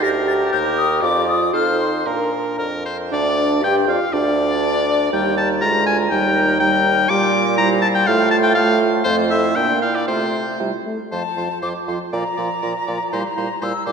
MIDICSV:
0, 0, Header, 1, 6, 480
1, 0, Start_track
1, 0, Key_signature, -2, "major"
1, 0, Tempo, 502934
1, 25, Time_signature, 2, 2, 24, 8
1, 1465, Tempo, 519931
1, 3865, Tempo, 491803
1, 6754, Key_signature, -1, "major"
1, 8665, Tempo, 513699
1, 11065, Tempo, 498339
1, 13282, End_track
2, 0, Start_track
2, 0, Title_t, "Flute"
2, 0, Program_c, 0, 73
2, 23, Note_on_c, 0, 94, 126
2, 80, Note_off_c, 0, 94, 0
2, 262, Note_on_c, 0, 93, 117
2, 319, Note_off_c, 0, 93, 0
2, 499, Note_on_c, 0, 91, 107
2, 556, Note_off_c, 0, 91, 0
2, 737, Note_on_c, 0, 87, 118
2, 972, Note_off_c, 0, 87, 0
2, 978, Note_on_c, 0, 86, 118
2, 1216, Note_off_c, 0, 86, 0
2, 1225, Note_on_c, 0, 87, 108
2, 1460, Note_off_c, 0, 87, 0
2, 1466, Note_on_c, 0, 89, 100
2, 1701, Note_off_c, 0, 89, 0
2, 1708, Note_on_c, 0, 84, 91
2, 1945, Note_off_c, 0, 84, 0
2, 1952, Note_on_c, 0, 82, 89
2, 2430, Note_off_c, 0, 82, 0
2, 2927, Note_on_c, 0, 74, 98
2, 3398, Note_on_c, 0, 79, 97
2, 3412, Note_off_c, 0, 74, 0
2, 3631, Note_on_c, 0, 77, 85
2, 3645, Note_off_c, 0, 79, 0
2, 3855, Note_off_c, 0, 77, 0
2, 3861, Note_on_c, 0, 74, 112
2, 4813, Note_off_c, 0, 74, 0
2, 4837, Note_on_c, 0, 70, 82
2, 5283, Note_off_c, 0, 70, 0
2, 5316, Note_on_c, 0, 70, 84
2, 5785, Note_off_c, 0, 70, 0
2, 5792, Note_on_c, 0, 70, 92
2, 6264, Note_off_c, 0, 70, 0
2, 6269, Note_on_c, 0, 70, 93
2, 6742, Note_off_c, 0, 70, 0
2, 6751, Note_on_c, 0, 70, 105
2, 7238, Note_on_c, 0, 72, 101
2, 7253, Note_off_c, 0, 70, 0
2, 7707, Note_off_c, 0, 72, 0
2, 7713, Note_on_c, 0, 72, 109
2, 8179, Note_off_c, 0, 72, 0
2, 8187, Note_on_c, 0, 72, 102
2, 8656, Note_off_c, 0, 72, 0
2, 8672, Note_on_c, 0, 72, 93
2, 9144, Note_on_c, 0, 74, 82
2, 9158, Note_off_c, 0, 72, 0
2, 9623, Note_on_c, 0, 72, 76
2, 9637, Note_off_c, 0, 74, 0
2, 9888, Note_off_c, 0, 72, 0
2, 10104, Note_on_c, 0, 72, 65
2, 10160, Note_off_c, 0, 72, 0
2, 10591, Note_on_c, 0, 81, 103
2, 11032, Note_off_c, 0, 81, 0
2, 11066, Note_on_c, 0, 86, 93
2, 11124, Note_off_c, 0, 86, 0
2, 11312, Note_on_c, 0, 84, 73
2, 11370, Note_off_c, 0, 84, 0
2, 11558, Note_on_c, 0, 82, 111
2, 12498, Note_off_c, 0, 82, 0
2, 12519, Note_on_c, 0, 82, 99
2, 12588, Note_on_c, 0, 84, 86
2, 12603, Note_off_c, 0, 82, 0
2, 12649, Note_on_c, 0, 82, 103
2, 12664, Note_off_c, 0, 84, 0
2, 12995, Note_on_c, 0, 88, 106
2, 13010, Note_off_c, 0, 82, 0
2, 13222, Note_off_c, 0, 88, 0
2, 13228, Note_on_c, 0, 86, 107
2, 13282, Note_off_c, 0, 86, 0
2, 13282, End_track
3, 0, Start_track
3, 0, Title_t, "Oboe"
3, 0, Program_c, 1, 68
3, 23, Note_on_c, 1, 70, 88
3, 494, Note_off_c, 1, 70, 0
3, 500, Note_on_c, 1, 70, 97
3, 966, Note_on_c, 1, 74, 79
3, 981, Note_off_c, 1, 70, 0
3, 1457, Note_off_c, 1, 74, 0
3, 1463, Note_on_c, 1, 72, 89
3, 1954, Note_on_c, 1, 70, 72
3, 1968, Note_off_c, 1, 72, 0
3, 2393, Note_off_c, 1, 70, 0
3, 2438, Note_on_c, 1, 70, 89
3, 2668, Note_off_c, 1, 70, 0
3, 2685, Note_on_c, 1, 72, 81
3, 2794, Note_off_c, 1, 72, 0
3, 2934, Note_on_c, 1, 74, 110
3, 3369, Note_off_c, 1, 74, 0
3, 3407, Note_on_c, 1, 79, 113
3, 3510, Note_off_c, 1, 79, 0
3, 3634, Note_on_c, 1, 77, 90
3, 3860, Note_on_c, 1, 74, 111
3, 3874, Note_off_c, 1, 77, 0
3, 4829, Note_off_c, 1, 74, 0
3, 4835, Note_on_c, 1, 79, 102
3, 5067, Note_off_c, 1, 79, 0
3, 5073, Note_on_c, 1, 81, 104
3, 5182, Note_off_c, 1, 81, 0
3, 5307, Note_on_c, 1, 82, 125
3, 5546, Note_off_c, 1, 82, 0
3, 5552, Note_on_c, 1, 80, 109
3, 5660, Note_off_c, 1, 80, 0
3, 5791, Note_on_c, 1, 79, 117
3, 6263, Note_off_c, 1, 79, 0
3, 6268, Note_on_c, 1, 79, 127
3, 6753, Note_on_c, 1, 86, 127
3, 6768, Note_off_c, 1, 79, 0
3, 7220, Note_off_c, 1, 86, 0
3, 7226, Note_on_c, 1, 82, 127
3, 7335, Note_off_c, 1, 82, 0
3, 7462, Note_on_c, 1, 81, 127
3, 7517, Note_off_c, 1, 81, 0
3, 7585, Note_on_c, 1, 79, 127
3, 7702, Note_on_c, 1, 77, 127
3, 7717, Note_off_c, 1, 79, 0
3, 7931, Note_off_c, 1, 77, 0
3, 7937, Note_on_c, 1, 81, 127
3, 7994, Note_off_c, 1, 81, 0
3, 8055, Note_on_c, 1, 79, 127
3, 8167, Note_off_c, 1, 79, 0
3, 8173, Note_on_c, 1, 77, 127
3, 8413, Note_off_c, 1, 77, 0
3, 8654, Note_on_c, 1, 72, 118
3, 8762, Note_off_c, 1, 72, 0
3, 8901, Note_on_c, 1, 76, 122
3, 9136, Note_on_c, 1, 79, 127
3, 9150, Note_off_c, 1, 76, 0
3, 9374, Note_off_c, 1, 79, 0
3, 9380, Note_on_c, 1, 77, 104
3, 9506, Note_on_c, 1, 74, 92
3, 9520, Note_off_c, 1, 77, 0
3, 9616, Note_off_c, 1, 74, 0
3, 9622, Note_on_c, 1, 72, 94
3, 10096, Note_off_c, 1, 72, 0
3, 10594, Note_on_c, 1, 72, 71
3, 10700, Note_off_c, 1, 72, 0
3, 10833, Note_on_c, 1, 72, 59
3, 10938, Note_off_c, 1, 72, 0
3, 11064, Note_on_c, 1, 72, 70
3, 11174, Note_off_c, 1, 72, 0
3, 11312, Note_on_c, 1, 72, 61
3, 11420, Note_off_c, 1, 72, 0
3, 11551, Note_on_c, 1, 74, 74
3, 11659, Note_off_c, 1, 74, 0
3, 11787, Note_on_c, 1, 74, 63
3, 11897, Note_off_c, 1, 74, 0
3, 12028, Note_on_c, 1, 74, 68
3, 12138, Note_off_c, 1, 74, 0
3, 12269, Note_on_c, 1, 74, 64
3, 12378, Note_off_c, 1, 74, 0
3, 12513, Note_on_c, 1, 72, 73
3, 12620, Note_off_c, 1, 72, 0
3, 12754, Note_on_c, 1, 72, 64
3, 12860, Note_off_c, 1, 72, 0
3, 12986, Note_on_c, 1, 72, 75
3, 13093, Note_off_c, 1, 72, 0
3, 13220, Note_on_c, 1, 72, 72
3, 13282, Note_off_c, 1, 72, 0
3, 13282, End_track
4, 0, Start_track
4, 0, Title_t, "Clarinet"
4, 0, Program_c, 2, 71
4, 27, Note_on_c, 2, 67, 97
4, 979, Note_on_c, 2, 65, 91
4, 993, Note_off_c, 2, 67, 0
4, 1468, Note_on_c, 2, 63, 79
4, 1482, Note_off_c, 2, 65, 0
4, 1943, Note_off_c, 2, 63, 0
4, 1949, Note_on_c, 2, 62, 71
4, 2671, Note_off_c, 2, 62, 0
4, 2926, Note_on_c, 2, 62, 106
4, 3365, Note_off_c, 2, 62, 0
4, 3396, Note_on_c, 2, 67, 102
4, 3619, Note_off_c, 2, 67, 0
4, 3624, Note_on_c, 2, 65, 87
4, 3731, Note_off_c, 2, 65, 0
4, 3862, Note_on_c, 2, 62, 104
4, 4813, Note_off_c, 2, 62, 0
4, 4826, Note_on_c, 2, 63, 88
4, 5313, Note_on_c, 2, 65, 89
4, 5328, Note_off_c, 2, 63, 0
4, 5789, Note_on_c, 2, 63, 101
4, 5804, Note_off_c, 2, 65, 0
4, 6272, Note_off_c, 2, 63, 0
4, 6276, Note_on_c, 2, 63, 97
4, 6753, Note_on_c, 2, 65, 103
4, 6768, Note_off_c, 2, 63, 0
4, 7230, Note_on_c, 2, 64, 97
4, 7244, Note_off_c, 2, 65, 0
4, 7709, Note_off_c, 2, 64, 0
4, 7715, Note_on_c, 2, 65, 105
4, 8180, Note_off_c, 2, 65, 0
4, 8190, Note_on_c, 2, 65, 99
4, 8658, Note_off_c, 2, 65, 0
4, 8669, Note_on_c, 2, 65, 98
4, 8899, Note_on_c, 2, 64, 92
4, 8913, Note_off_c, 2, 65, 0
4, 9138, Note_on_c, 2, 62, 85
4, 9152, Note_off_c, 2, 64, 0
4, 9385, Note_on_c, 2, 64, 78
4, 9399, Note_off_c, 2, 62, 0
4, 9618, Note_off_c, 2, 64, 0
4, 9624, Note_on_c, 2, 65, 82
4, 10110, Note_on_c, 2, 64, 70
4, 10124, Note_off_c, 2, 65, 0
4, 10352, Note_off_c, 2, 64, 0
4, 10600, Note_on_c, 2, 65, 72
4, 10705, Note_off_c, 2, 65, 0
4, 10832, Note_on_c, 2, 65, 61
4, 10937, Note_off_c, 2, 65, 0
4, 11070, Note_on_c, 2, 65, 64
4, 11178, Note_off_c, 2, 65, 0
4, 11316, Note_on_c, 2, 65, 69
4, 11423, Note_off_c, 2, 65, 0
4, 11559, Note_on_c, 2, 65, 77
4, 11665, Note_off_c, 2, 65, 0
4, 11797, Note_on_c, 2, 65, 68
4, 11904, Note_off_c, 2, 65, 0
4, 12032, Note_on_c, 2, 65, 69
4, 12141, Note_off_c, 2, 65, 0
4, 12276, Note_on_c, 2, 65, 73
4, 12383, Note_off_c, 2, 65, 0
4, 12507, Note_on_c, 2, 64, 76
4, 12615, Note_off_c, 2, 64, 0
4, 12742, Note_on_c, 2, 64, 68
4, 12851, Note_off_c, 2, 64, 0
4, 12983, Note_on_c, 2, 64, 74
4, 13091, Note_off_c, 2, 64, 0
4, 13231, Note_on_c, 2, 64, 72
4, 13282, Note_off_c, 2, 64, 0
4, 13282, End_track
5, 0, Start_track
5, 0, Title_t, "French horn"
5, 0, Program_c, 3, 60
5, 26, Note_on_c, 3, 67, 120
5, 978, Note_on_c, 3, 65, 92
5, 992, Note_off_c, 3, 67, 0
5, 1468, Note_on_c, 3, 69, 94
5, 1482, Note_off_c, 3, 65, 0
5, 1807, Note_off_c, 3, 69, 0
5, 1950, Note_on_c, 3, 70, 83
5, 2671, Note_off_c, 3, 70, 0
5, 2927, Note_on_c, 3, 62, 100
5, 3396, Note_on_c, 3, 67, 101
5, 3410, Note_off_c, 3, 62, 0
5, 3632, Note_off_c, 3, 67, 0
5, 3637, Note_on_c, 3, 65, 77
5, 3861, Note_off_c, 3, 65, 0
5, 3866, Note_on_c, 3, 62, 106
5, 4816, Note_off_c, 3, 62, 0
5, 4838, Note_on_c, 3, 55, 87
5, 5315, Note_on_c, 3, 56, 85
5, 5330, Note_off_c, 3, 55, 0
5, 5790, Note_off_c, 3, 56, 0
5, 5795, Note_on_c, 3, 55, 88
5, 6265, Note_off_c, 3, 55, 0
5, 6280, Note_on_c, 3, 55, 94
5, 6748, Note_off_c, 3, 55, 0
5, 6759, Note_on_c, 3, 55, 104
5, 7224, Note_off_c, 3, 55, 0
5, 7235, Note_on_c, 3, 55, 103
5, 7717, Note_on_c, 3, 57, 106
5, 7731, Note_off_c, 3, 55, 0
5, 8187, Note_off_c, 3, 57, 0
5, 8193, Note_on_c, 3, 57, 101
5, 8659, Note_off_c, 3, 57, 0
5, 8667, Note_on_c, 3, 57, 93
5, 9143, Note_on_c, 3, 58, 86
5, 9157, Note_off_c, 3, 57, 0
5, 9627, Note_on_c, 3, 57, 75
5, 9641, Note_off_c, 3, 58, 0
5, 9970, Note_off_c, 3, 57, 0
5, 10115, Note_on_c, 3, 55, 71
5, 10223, Note_off_c, 3, 55, 0
5, 10355, Note_on_c, 3, 57, 77
5, 10463, Note_off_c, 3, 57, 0
5, 10598, Note_on_c, 3, 53, 67
5, 10703, Note_off_c, 3, 53, 0
5, 10835, Note_on_c, 3, 53, 59
5, 10940, Note_off_c, 3, 53, 0
5, 11068, Note_on_c, 3, 53, 60
5, 11177, Note_off_c, 3, 53, 0
5, 11316, Note_on_c, 3, 53, 62
5, 11423, Note_off_c, 3, 53, 0
5, 11556, Note_on_c, 3, 53, 69
5, 11663, Note_off_c, 3, 53, 0
5, 11797, Note_on_c, 3, 53, 63
5, 11904, Note_off_c, 3, 53, 0
5, 12036, Note_on_c, 3, 53, 61
5, 12144, Note_off_c, 3, 53, 0
5, 12278, Note_on_c, 3, 53, 60
5, 12385, Note_off_c, 3, 53, 0
5, 12524, Note_on_c, 3, 55, 72
5, 12628, Note_off_c, 3, 55, 0
5, 12757, Note_on_c, 3, 55, 67
5, 12862, Note_off_c, 3, 55, 0
5, 12989, Note_on_c, 3, 55, 67
5, 13095, Note_off_c, 3, 55, 0
5, 13229, Note_on_c, 3, 55, 64
5, 13282, Note_off_c, 3, 55, 0
5, 13282, End_track
6, 0, Start_track
6, 0, Title_t, "Bassoon"
6, 0, Program_c, 4, 70
6, 26, Note_on_c, 4, 38, 100
6, 497, Note_off_c, 4, 38, 0
6, 503, Note_on_c, 4, 39, 95
6, 969, Note_off_c, 4, 39, 0
6, 975, Note_on_c, 4, 41, 105
6, 1455, Note_off_c, 4, 41, 0
6, 1467, Note_on_c, 4, 41, 84
6, 1940, Note_off_c, 4, 41, 0
6, 1952, Note_on_c, 4, 46, 80
6, 2443, Note_on_c, 4, 41, 75
6, 2457, Note_off_c, 4, 46, 0
6, 2923, Note_off_c, 4, 41, 0
6, 2928, Note_on_c, 4, 38, 101
6, 3398, Note_on_c, 4, 43, 98
6, 3412, Note_off_c, 4, 38, 0
6, 3623, Note_off_c, 4, 43, 0
6, 3628, Note_on_c, 4, 41, 80
6, 3735, Note_off_c, 4, 41, 0
6, 3860, Note_on_c, 4, 38, 104
6, 4812, Note_off_c, 4, 38, 0
6, 4827, Note_on_c, 4, 39, 93
6, 5313, Note_on_c, 4, 38, 97
6, 5328, Note_off_c, 4, 39, 0
6, 5784, Note_off_c, 4, 38, 0
6, 5790, Note_on_c, 4, 39, 101
6, 6733, Note_off_c, 4, 39, 0
6, 6753, Note_on_c, 4, 46, 113
6, 7690, Note_off_c, 4, 46, 0
6, 7711, Note_on_c, 4, 45, 116
6, 8647, Note_off_c, 4, 45, 0
6, 8666, Note_on_c, 4, 41, 108
6, 9137, Note_on_c, 4, 46, 93
6, 9151, Note_off_c, 4, 41, 0
6, 9615, Note_off_c, 4, 46, 0
6, 9620, Note_on_c, 4, 48, 84
6, 10095, Note_off_c, 4, 48, 0
6, 10108, Note_on_c, 4, 48, 78
6, 10217, Note_off_c, 4, 48, 0
6, 10591, Note_on_c, 4, 41, 81
6, 10697, Note_off_c, 4, 41, 0
6, 10828, Note_on_c, 4, 41, 69
6, 10934, Note_off_c, 4, 41, 0
6, 11068, Note_on_c, 4, 41, 72
6, 11177, Note_off_c, 4, 41, 0
6, 11308, Note_on_c, 4, 41, 68
6, 11417, Note_off_c, 4, 41, 0
6, 11552, Note_on_c, 4, 46, 79
6, 11660, Note_off_c, 4, 46, 0
6, 11792, Note_on_c, 4, 46, 72
6, 11900, Note_off_c, 4, 46, 0
6, 12032, Note_on_c, 4, 46, 74
6, 12141, Note_off_c, 4, 46, 0
6, 12276, Note_on_c, 4, 46, 73
6, 12383, Note_off_c, 4, 46, 0
6, 12514, Note_on_c, 4, 46, 84
6, 12621, Note_off_c, 4, 46, 0
6, 12752, Note_on_c, 4, 46, 77
6, 12859, Note_off_c, 4, 46, 0
6, 12991, Note_on_c, 4, 46, 83
6, 13097, Note_off_c, 4, 46, 0
6, 13227, Note_on_c, 4, 46, 79
6, 13282, Note_off_c, 4, 46, 0
6, 13282, End_track
0, 0, End_of_file